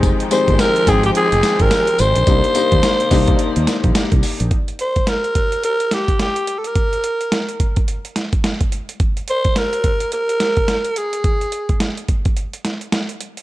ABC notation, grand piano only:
X:1
M:4/4
L:1/8
Q:"Swing 16ths" 1/4=107
K:Cm
V:1 name="Grand piano"
[A,CEG] [A,CEG]2 [A,CEg]3 z2 | [B,DEG] [B,DEG]2 [B,DEG]3 z2 | z8 | z8 |
z8 | z8 |]